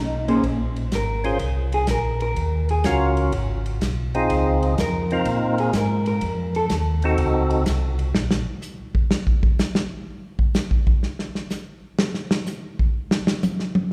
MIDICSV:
0, 0, Header, 1, 5, 480
1, 0, Start_track
1, 0, Key_signature, -5, "minor"
1, 0, Tempo, 481155
1, 433, Time_signature, 4, 2, 24, 8
1, 13895, End_track
2, 0, Start_track
2, 0, Title_t, "Hollow-body jazz guitar"
2, 0, Program_c, 0, 26
2, 279, Note_on_c, 0, 58, 58
2, 282, Note_on_c, 0, 61, 62
2, 285, Note_on_c, 0, 68, 66
2, 289, Note_on_c, 0, 72, 65
2, 417, Note_off_c, 0, 58, 0
2, 418, Note_off_c, 0, 61, 0
2, 420, Note_off_c, 0, 68, 0
2, 422, Note_off_c, 0, 72, 0
2, 950, Note_on_c, 0, 70, 66
2, 1701, Note_off_c, 0, 70, 0
2, 1738, Note_on_c, 0, 68, 75
2, 1878, Note_off_c, 0, 68, 0
2, 1902, Note_on_c, 0, 70, 71
2, 2204, Note_off_c, 0, 70, 0
2, 2216, Note_on_c, 0, 70, 72
2, 2658, Note_off_c, 0, 70, 0
2, 2701, Note_on_c, 0, 68, 61
2, 2841, Note_off_c, 0, 68, 0
2, 4790, Note_on_c, 0, 70, 77
2, 5544, Note_off_c, 0, 70, 0
2, 5586, Note_on_c, 0, 68, 76
2, 5725, Note_off_c, 0, 68, 0
2, 5760, Note_on_c, 0, 70, 72
2, 6049, Note_off_c, 0, 70, 0
2, 6061, Note_on_c, 0, 70, 78
2, 6502, Note_off_c, 0, 70, 0
2, 6547, Note_on_c, 0, 69, 76
2, 6633, Note_off_c, 0, 69, 0
2, 13895, End_track
3, 0, Start_track
3, 0, Title_t, "Tonewheel organ"
3, 0, Program_c, 1, 16
3, 0, Note_on_c, 1, 63, 66
3, 251, Note_off_c, 1, 63, 0
3, 1237, Note_on_c, 1, 61, 56
3, 1245, Note_on_c, 1, 65, 45
3, 1250, Note_on_c, 1, 68, 47
3, 1256, Note_on_c, 1, 72, 61
3, 1377, Note_off_c, 1, 61, 0
3, 1380, Note_off_c, 1, 65, 0
3, 1383, Note_off_c, 1, 68, 0
3, 1386, Note_off_c, 1, 72, 0
3, 2845, Note_on_c, 1, 61, 58
3, 2850, Note_on_c, 1, 65, 55
3, 2851, Note_on_c, 1, 66, 52
3, 2854, Note_on_c, 1, 70, 61
3, 3321, Note_off_c, 1, 61, 0
3, 3324, Note_off_c, 1, 65, 0
3, 3325, Note_off_c, 1, 66, 0
3, 3326, Note_off_c, 1, 70, 0
3, 4136, Note_on_c, 1, 60, 63
3, 4139, Note_on_c, 1, 63, 57
3, 4146, Note_on_c, 1, 68, 68
3, 4147, Note_on_c, 1, 65, 55
3, 4734, Note_off_c, 1, 60, 0
3, 4735, Note_off_c, 1, 63, 0
3, 4739, Note_off_c, 1, 65, 0
3, 4739, Note_off_c, 1, 68, 0
3, 5107, Note_on_c, 1, 60, 56
3, 5111, Note_on_c, 1, 63, 52
3, 5111, Note_on_c, 1, 65, 50
3, 5121, Note_on_c, 1, 70, 64
3, 5699, Note_off_c, 1, 60, 0
3, 5702, Note_off_c, 1, 63, 0
3, 5702, Note_off_c, 1, 65, 0
3, 5707, Note_off_c, 1, 70, 0
3, 7023, Note_on_c, 1, 60, 61
3, 7029, Note_on_c, 1, 63, 52
3, 7034, Note_on_c, 1, 66, 53
3, 7036, Note_on_c, 1, 69, 65
3, 7619, Note_off_c, 1, 60, 0
3, 7621, Note_off_c, 1, 63, 0
3, 7624, Note_off_c, 1, 66, 0
3, 7625, Note_off_c, 1, 69, 0
3, 13895, End_track
4, 0, Start_track
4, 0, Title_t, "Tonewheel organ"
4, 0, Program_c, 2, 16
4, 0, Note_on_c, 2, 35, 77
4, 395, Note_off_c, 2, 35, 0
4, 433, Note_on_c, 2, 34, 67
4, 899, Note_off_c, 2, 34, 0
4, 915, Note_on_c, 2, 32, 72
4, 1380, Note_off_c, 2, 32, 0
4, 1396, Note_on_c, 2, 36, 64
4, 1861, Note_off_c, 2, 36, 0
4, 1877, Note_on_c, 2, 34, 74
4, 2343, Note_off_c, 2, 34, 0
4, 2359, Note_on_c, 2, 39, 75
4, 2824, Note_off_c, 2, 39, 0
4, 2842, Note_on_c, 2, 37, 76
4, 3306, Note_off_c, 2, 37, 0
4, 3322, Note_on_c, 2, 32, 70
4, 3786, Note_off_c, 2, 32, 0
4, 3803, Note_on_c, 2, 35, 80
4, 4267, Note_off_c, 2, 35, 0
4, 4290, Note_on_c, 2, 37, 74
4, 4751, Note_off_c, 2, 37, 0
4, 4765, Note_on_c, 2, 41, 80
4, 5229, Note_off_c, 2, 41, 0
4, 5245, Note_on_c, 2, 46, 74
4, 5709, Note_off_c, 2, 46, 0
4, 5723, Note_on_c, 2, 44, 81
4, 6188, Note_off_c, 2, 44, 0
4, 6206, Note_on_c, 2, 41, 68
4, 6669, Note_off_c, 2, 41, 0
4, 6684, Note_on_c, 2, 39, 82
4, 7149, Note_off_c, 2, 39, 0
4, 7167, Note_on_c, 2, 37, 70
4, 7630, Note_off_c, 2, 37, 0
4, 7646, Note_on_c, 2, 36, 74
4, 8110, Note_off_c, 2, 36, 0
4, 8123, Note_on_c, 2, 34, 70
4, 8441, Note_off_c, 2, 34, 0
4, 13895, End_track
5, 0, Start_track
5, 0, Title_t, "Drums"
5, 282, Note_on_c, 9, 51, 44
5, 382, Note_off_c, 9, 51, 0
5, 434, Note_on_c, 9, 51, 49
5, 435, Note_on_c, 9, 36, 21
5, 534, Note_off_c, 9, 51, 0
5, 535, Note_off_c, 9, 36, 0
5, 762, Note_on_c, 9, 51, 37
5, 861, Note_off_c, 9, 51, 0
5, 915, Note_on_c, 9, 44, 45
5, 915, Note_on_c, 9, 51, 53
5, 916, Note_on_c, 9, 36, 18
5, 920, Note_on_c, 9, 38, 52
5, 1015, Note_off_c, 9, 44, 0
5, 1015, Note_off_c, 9, 51, 0
5, 1016, Note_off_c, 9, 36, 0
5, 1020, Note_off_c, 9, 38, 0
5, 1240, Note_on_c, 9, 51, 39
5, 1340, Note_off_c, 9, 51, 0
5, 1390, Note_on_c, 9, 51, 51
5, 1396, Note_on_c, 9, 36, 21
5, 1489, Note_off_c, 9, 51, 0
5, 1496, Note_off_c, 9, 36, 0
5, 1720, Note_on_c, 9, 51, 41
5, 1820, Note_off_c, 9, 51, 0
5, 1865, Note_on_c, 9, 44, 54
5, 1865, Note_on_c, 9, 51, 53
5, 1870, Note_on_c, 9, 38, 54
5, 1876, Note_on_c, 9, 36, 22
5, 1965, Note_off_c, 9, 44, 0
5, 1965, Note_off_c, 9, 51, 0
5, 1970, Note_off_c, 9, 38, 0
5, 1976, Note_off_c, 9, 36, 0
5, 2198, Note_on_c, 9, 51, 38
5, 2298, Note_off_c, 9, 51, 0
5, 2358, Note_on_c, 9, 51, 48
5, 2360, Note_on_c, 9, 36, 24
5, 2458, Note_off_c, 9, 51, 0
5, 2459, Note_off_c, 9, 36, 0
5, 2682, Note_on_c, 9, 51, 38
5, 2782, Note_off_c, 9, 51, 0
5, 2833, Note_on_c, 9, 44, 46
5, 2833, Note_on_c, 9, 51, 60
5, 2838, Note_on_c, 9, 38, 61
5, 2840, Note_on_c, 9, 36, 20
5, 2933, Note_off_c, 9, 44, 0
5, 2933, Note_off_c, 9, 51, 0
5, 2938, Note_off_c, 9, 38, 0
5, 2940, Note_off_c, 9, 36, 0
5, 3160, Note_on_c, 9, 51, 40
5, 3260, Note_off_c, 9, 51, 0
5, 3316, Note_on_c, 9, 51, 53
5, 3322, Note_on_c, 9, 36, 19
5, 3416, Note_off_c, 9, 51, 0
5, 3422, Note_off_c, 9, 36, 0
5, 3649, Note_on_c, 9, 51, 40
5, 3748, Note_off_c, 9, 51, 0
5, 3804, Note_on_c, 9, 44, 54
5, 3804, Note_on_c, 9, 51, 52
5, 3805, Note_on_c, 9, 36, 22
5, 3809, Note_on_c, 9, 38, 57
5, 3904, Note_off_c, 9, 44, 0
5, 3904, Note_off_c, 9, 51, 0
5, 3905, Note_off_c, 9, 36, 0
5, 3909, Note_off_c, 9, 38, 0
5, 4136, Note_on_c, 9, 51, 41
5, 4236, Note_off_c, 9, 51, 0
5, 4286, Note_on_c, 9, 36, 18
5, 4288, Note_on_c, 9, 51, 55
5, 4386, Note_off_c, 9, 36, 0
5, 4387, Note_off_c, 9, 51, 0
5, 4614, Note_on_c, 9, 51, 40
5, 4714, Note_off_c, 9, 51, 0
5, 4766, Note_on_c, 9, 36, 17
5, 4768, Note_on_c, 9, 44, 49
5, 4768, Note_on_c, 9, 51, 56
5, 4773, Note_on_c, 9, 38, 61
5, 4866, Note_off_c, 9, 36, 0
5, 4868, Note_off_c, 9, 44, 0
5, 4868, Note_off_c, 9, 51, 0
5, 4873, Note_off_c, 9, 38, 0
5, 5093, Note_on_c, 9, 51, 38
5, 5192, Note_off_c, 9, 51, 0
5, 5241, Note_on_c, 9, 51, 56
5, 5246, Note_on_c, 9, 36, 18
5, 5341, Note_off_c, 9, 51, 0
5, 5346, Note_off_c, 9, 36, 0
5, 5568, Note_on_c, 9, 51, 41
5, 5668, Note_off_c, 9, 51, 0
5, 5719, Note_on_c, 9, 44, 50
5, 5719, Note_on_c, 9, 51, 62
5, 5724, Note_on_c, 9, 38, 58
5, 5726, Note_on_c, 9, 36, 18
5, 5819, Note_off_c, 9, 44, 0
5, 5819, Note_off_c, 9, 51, 0
5, 5824, Note_off_c, 9, 38, 0
5, 5825, Note_off_c, 9, 36, 0
5, 6044, Note_on_c, 9, 51, 41
5, 6144, Note_off_c, 9, 51, 0
5, 6197, Note_on_c, 9, 51, 50
5, 6205, Note_on_c, 9, 36, 24
5, 6296, Note_off_c, 9, 51, 0
5, 6305, Note_off_c, 9, 36, 0
5, 6531, Note_on_c, 9, 51, 39
5, 6631, Note_off_c, 9, 51, 0
5, 6680, Note_on_c, 9, 44, 48
5, 6680, Note_on_c, 9, 51, 59
5, 6685, Note_on_c, 9, 38, 60
5, 6687, Note_on_c, 9, 36, 17
5, 6780, Note_off_c, 9, 44, 0
5, 6780, Note_off_c, 9, 51, 0
5, 6785, Note_off_c, 9, 38, 0
5, 6786, Note_off_c, 9, 36, 0
5, 7006, Note_on_c, 9, 51, 40
5, 7106, Note_off_c, 9, 51, 0
5, 7161, Note_on_c, 9, 51, 54
5, 7166, Note_on_c, 9, 36, 24
5, 7261, Note_off_c, 9, 51, 0
5, 7266, Note_off_c, 9, 36, 0
5, 7486, Note_on_c, 9, 51, 43
5, 7586, Note_off_c, 9, 51, 0
5, 7641, Note_on_c, 9, 44, 54
5, 7641, Note_on_c, 9, 51, 65
5, 7645, Note_on_c, 9, 36, 20
5, 7646, Note_on_c, 9, 38, 58
5, 7741, Note_off_c, 9, 44, 0
5, 7741, Note_off_c, 9, 51, 0
5, 7745, Note_off_c, 9, 36, 0
5, 7746, Note_off_c, 9, 38, 0
5, 7969, Note_on_c, 9, 51, 40
5, 8068, Note_off_c, 9, 51, 0
5, 8126, Note_on_c, 9, 38, 82
5, 8226, Note_off_c, 9, 38, 0
5, 8286, Note_on_c, 9, 38, 85
5, 8386, Note_off_c, 9, 38, 0
5, 8598, Note_on_c, 9, 44, 52
5, 8698, Note_off_c, 9, 44, 0
5, 8926, Note_on_c, 9, 36, 66
5, 9025, Note_off_c, 9, 36, 0
5, 9084, Note_on_c, 9, 38, 89
5, 9184, Note_off_c, 9, 38, 0
5, 9246, Note_on_c, 9, 36, 70
5, 9346, Note_off_c, 9, 36, 0
5, 9408, Note_on_c, 9, 36, 75
5, 9507, Note_off_c, 9, 36, 0
5, 9567, Note_on_c, 9, 44, 48
5, 9572, Note_on_c, 9, 38, 80
5, 9667, Note_off_c, 9, 44, 0
5, 9672, Note_off_c, 9, 38, 0
5, 9727, Note_on_c, 9, 38, 85
5, 9827, Note_off_c, 9, 38, 0
5, 10363, Note_on_c, 9, 36, 68
5, 10463, Note_off_c, 9, 36, 0
5, 10518, Note_on_c, 9, 44, 50
5, 10523, Note_on_c, 9, 38, 81
5, 10617, Note_off_c, 9, 44, 0
5, 10622, Note_off_c, 9, 38, 0
5, 10684, Note_on_c, 9, 36, 68
5, 10784, Note_off_c, 9, 36, 0
5, 10843, Note_on_c, 9, 36, 71
5, 10942, Note_off_c, 9, 36, 0
5, 11003, Note_on_c, 9, 38, 35
5, 11103, Note_off_c, 9, 38, 0
5, 11165, Note_on_c, 9, 38, 43
5, 11265, Note_off_c, 9, 38, 0
5, 11326, Note_on_c, 9, 38, 43
5, 11426, Note_off_c, 9, 38, 0
5, 11474, Note_on_c, 9, 44, 52
5, 11479, Note_on_c, 9, 38, 44
5, 11573, Note_off_c, 9, 44, 0
5, 11578, Note_off_c, 9, 38, 0
5, 11957, Note_on_c, 9, 38, 89
5, 12056, Note_off_c, 9, 38, 0
5, 12115, Note_on_c, 9, 38, 43
5, 12215, Note_off_c, 9, 38, 0
5, 12278, Note_on_c, 9, 38, 90
5, 12378, Note_off_c, 9, 38, 0
5, 12432, Note_on_c, 9, 44, 47
5, 12437, Note_on_c, 9, 38, 31
5, 12532, Note_off_c, 9, 44, 0
5, 12537, Note_off_c, 9, 38, 0
5, 12763, Note_on_c, 9, 36, 67
5, 12863, Note_off_c, 9, 36, 0
5, 13080, Note_on_c, 9, 38, 92
5, 13180, Note_off_c, 9, 38, 0
5, 13239, Note_on_c, 9, 38, 94
5, 13339, Note_off_c, 9, 38, 0
5, 13395, Note_on_c, 9, 44, 51
5, 13400, Note_on_c, 9, 48, 86
5, 13495, Note_off_c, 9, 44, 0
5, 13500, Note_off_c, 9, 48, 0
5, 13563, Note_on_c, 9, 38, 41
5, 13662, Note_off_c, 9, 38, 0
5, 13718, Note_on_c, 9, 48, 85
5, 13817, Note_off_c, 9, 48, 0
5, 13895, End_track
0, 0, End_of_file